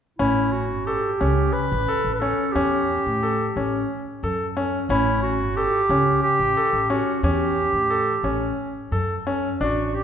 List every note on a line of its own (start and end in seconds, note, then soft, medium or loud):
0.19 0.70 A1 medium
0.19 0.62 C#4 medium
0.19 0.54 E4 medium
0.52 0.87 F#4 medium
0.70 0.97 G1 medium
0.86 1.54 G4 medium
0.86 1.08 A4 medium
1.21 1.48 C#2 medium
1.21 1.63 C#4 medium
1.53 2.14 B4 loud
1.72 1.85 A1 medium
1.88 2.09 A4 medium
2.04 2.32 A1 medium
2.15 2.21 B4 medium
2.20 2.43 C#4 medium
2.20 2.54 A4 medium
2.53 2.96 E2 medium
2.53 2.98 C#4 medium
2.53 3.89 G4 medium
3.06 3.46 A2 medium
3.23 3.44 A4 medium
3.56 3.83 A1 medium
3.56 3.98 C#4 medium
4.23 4.76 F#2 medium
4.23 4.44 A4 medium
4.57 4.77 C#4 medium
4.89 5.40 A1 medium
4.89 5.32 C#4 medium
4.89 5.21 E4 medium
5.22 5.57 F#4 medium
5.40 5.67 G1 medium
5.56 6.22 G4 medium
5.56 5.78 A4 medium
5.89 6.16 C#2 medium
5.89 6.32 C#4 medium
6.23 6.91 G4 loud
6.39 6.53 A1 medium
6.57 6.78 A4 medium
6.73 7.00 A1 medium
6.90 7.11 C#4 medium
6.90 7.23 F#4 medium
7.23 7.63 E2 medium
7.23 7.66 C#4 medium
7.23 8.54 G4 medium
7.73 8.14 A2 medium
7.90 8.11 A4 medium
8.23 8.51 A1 medium
8.23 8.67 C#4 medium
8.92 9.47 F#2 medium
8.92 9.14 A4 medium
9.27 9.48 C#4 medium
9.60 10.04 A1 medium
9.60 10.03 D4 medium
9.60 9.95 F#4 medium
9.94 10.04 G4 medium